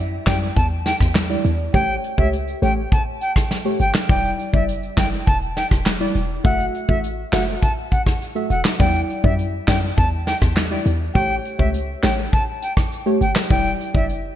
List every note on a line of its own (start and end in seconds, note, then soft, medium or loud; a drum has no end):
0.00 0.19 F#2 loud
0.27 0.51 F#2 medium
0.27 0.46 G3 medium
0.27 0.46 E4 medium
0.27 0.46 D5 medium
0.27 0.37 G5 medium
0.27 kick medium
0.27 snare loud
0.27 clap medium
0.27 closed hi-hat medium
0.56 0.93 E2 loud
0.56 0.67 A5 medium
0.56 kick loud
0.56 closed hi-hat medium
0.85 0.96 G5 medium
0.85 snare medium
0.85 closed hi-hat medium
1.00 1.37 E2 medium
1.00 kick medium
1.00 cross-stick loud
1.15 snare loud
1.15 clap medium
1.15 closed hi-hat medium
1.29 1.49 G3 medium
1.29 1.49 E4 medium
1.29 1.49 D5 medium
1.45 1.69 E2 loud
1.45 closed hi-hat medium
1.74 1.98 A1 loud
1.74 2.15 A3 loud
1.74 2.15 G4 medium
1.74 2.15 C#5 loud
1.74 1.95 G5 loud
1.74 kick loud
1.74 closed hi-hat medium
2.04 closed hi-hat medium
2.18 2.55 C#2 medium
2.18 2.37 A3 medium
2.18 2.37 G4 medium
2.18 2.37 C#5 medium
2.18 2.28 E5 medium
2.18 kick medium
2.33 closed hi-hat medium
2.48 closed hi-hat medium
2.62 2.87 A1 medium
2.62 2.81 A3 medium
2.62 2.81 G4 medium
2.62 2.81 C#5 medium
2.62 2.73 G5 medium
2.62 closed hi-hat medium
2.92 3.02 A5 medium
2.92 kick loud
2.92 closed hi-hat medium
3.21 3.32 G5 medium
3.21 closed hi-hat medium
3.36 kick loud
3.36 cross-stick loud
3.51 snare medium
3.51 closed hi-hat medium
3.65 3.84 A3 medium
3.65 3.84 G4 medium
3.65 3.84 C#5 medium
3.80 3.92 G1 medium
3.80 3.90 G5 medium
3.80 closed hi-hat medium
3.95 snare loud
3.95 clap medium
4.09 4.34 E1 loud
4.09 4.50 G3 loud
4.09 4.50 E4 medium
4.09 4.50 D5 loud
4.09 4.30 G5 medium
4.09 kick loud
4.09 closed hi-hat medium
4.24 closed hi-hat medium
4.39 closed hi-hat medium
4.53 4.90 F#1 medium
4.53 4.72 G3 medium
4.53 4.72 E4 medium
4.53 4.72 D5 medium
4.53 4.64 E5 medium
4.53 kick medium
4.68 closed hi-hat medium
4.83 closed hi-hat medium
4.97 5.22 F#1 loud
4.97 5.16 G3 medium
4.97 5.16 E4 medium
4.97 5.17 D5 medium
4.97 5.08 G5 medium
4.97 kick medium
4.97 snare loud
4.97 clap medium
4.97 closed hi-hat medium
5.27 5.64 E1 loud
5.27 5.37 A5 medium
5.27 kick loud
5.27 closed hi-hat medium
5.42 closed hi-hat medium
5.56 5.67 G5 medium
5.56 snare medium
5.56 closed hi-hat medium
5.71 6.08 E1 medium
5.71 kick loud
5.71 cross-stick loud
5.86 snare loud
5.86 clap medium
5.86 closed hi-hat medium
6.00 6.19 G3 medium
6.00 6.20 E4 medium
6.00 6.20 D5 medium
6.15 6.39 E1 loud
6.15 closed hi-hat medium
6.44 6.69 F#1 loud
6.44 6.85 A3 loud
6.44 6.85 F#4 medium
6.44 6.85 E5 loud
6.44 6.65 F#5 loud
6.44 kick loud
6.44 closed hi-hat medium
6.60 closed hi-hat medium
6.74 closed hi-hat medium
6.88 7.25 A1 loud
6.88 7.08 A3 medium
6.88 7.08 F#4 medium
6.88 6.99 E5 medium
6.88 7.08 E5 medium
6.88 kick medium
7.04 closed hi-hat medium
7.32 7.57 F#1 loud
7.32 7.52 A3 medium
7.32 7.52 F#4 medium
7.32 7.52 E5 medium
7.32 7.43 F#5 medium
7.32 snare loud
7.32 clap medium
7.32 closed hi-hat medium
7.62 7.72 A5 medium
7.62 kick loud
7.62 closed hi-hat medium
7.91 8.02 F#5 medium
7.91 kick medium
7.91 closed hi-hat medium
8.06 kick medium
8.06 cross-stick loud
8.21 closed hi-hat medium
8.35 8.55 A3 medium
8.35 8.55 F#4 medium
8.35 8.55 E5 medium
8.35 closed hi-hat soft
8.50 8.62 E1 medium
8.50 8.61 F#5 medium
8.50 closed hi-hat medium
8.65 snare loud
8.65 clap medium
8.79 9.04 E2 loud
8.79 9.20 G3 loud
8.79 9.20 E4 medium
8.79 9.21 D5 loud
8.79 9.00 G5 medium
8.79 kick loud
8.79 closed hi-hat medium
8.95 closed hi-hat medium
9.09 closed hi-hat medium
9.23 9.60 F#2 loud
9.23 9.43 G3 medium
9.23 9.43 E4 medium
9.23 9.43 D5 medium
9.23 9.34 E5 medium
9.23 kick medium
9.39 closed hi-hat medium
9.68 9.92 F#2 loud
9.68 9.87 G3 medium
9.68 9.87 E4 medium
9.68 9.87 D5 medium
9.68 9.78 G5 medium
9.68 kick medium
9.68 snare loud
9.68 clap medium
9.68 closed hi-hat medium
9.97 10.34 E2 loud
9.97 10.08 A5 medium
9.97 kick loud
9.97 closed hi-hat medium
10.26 10.37 G5 medium
10.26 snare medium
10.26 closed hi-hat medium
10.42 10.78 E2 medium
10.42 kick medium
10.42 cross-stick loud
10.57 snare loud
10.57 clap medium
10.57 closed hi-hat medium
10.71 10.90 G3 medium
10.71 10.90 E4 medium
10.71 10.90 D5 medium
10.71 closed hi-hat soft
10.86 11.10 E2 loud
10.86 closed hi-hat medium
11.15 11.40 A1 loud
11.15 11.56 A3 loud
11.15 11.56 G4 medium
11.15 11.56 C#5 loud
11.15 11.35 G5 loud
11.15 kick loud
11.15 closed hi-hat medium
11.45 closed hi-hat medium
11.58 11.96 C#2 loud
11.58 11.78 A3 medium
11.58 11.78 G4 medium
11.58 11.78 C#5 medium
11.58 11.69 E5 medium
11.58 kick medium
11.74 closed hi-hat medium
12.03 12.28 A1 medium
12.03 12.22 A3 medium
12.03 12.22 G4 medium
12.03 12.22 C#5 medium
12.03 12.14 G5 medium
12.03 snare loud
12.03 clap medium
12.03 closed hi-hat medium
12.32 12.43 A5 medium
12.32 kick loud
12.32 closed hi-hat medium
12.62 12.73 G5 medium
12.62 closed hi-hat medium
12.77 kick loud
12.77 cross-stick loud
12.92 closed hi-hat medium
13.06 13.25 A3 medium
13.06 13.25 G4 medium
13.06 13.25 C#5 medium
13.06 closed hi-hat soft
13.21 13.33 G1 medium
13.21 13.31 G5 medium
13.21 closed hi-hat medium
13.36 snare loud
13.36 clap medium
13.50 13.75 E1 loud
13.50 13.91 G3 medium
13.50 13.91 E4 medium
13.50 13.91 D5 loud
13.50 13.71 G5 loud
13.50 kick loud
13.50 closed hi-hat medium
13.65 closed hi-hat medium
13.80 closed hi-hat medium
13.94 14.31 F#1 medium
13.94 14.13 G3 medium
13.94 14.14 E4 medium
13.94 14.14 D5 medium
13.94 14.05 E5 medium
13.94 kick medium
14.09 closed hi-hat medium